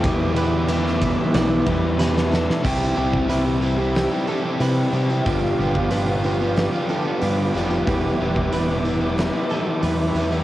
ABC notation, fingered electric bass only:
X:1
M:4/4
L:1/8
Q:1/4=92
K:C
V:1 name="Fingered electric bass" clef=bass
E,,4 B,,, E,,3 | C,, C,,4 z C, C, | G,,, G,,,4 z G,, F,,, | E,,, E,,,4 z E,, E,, |]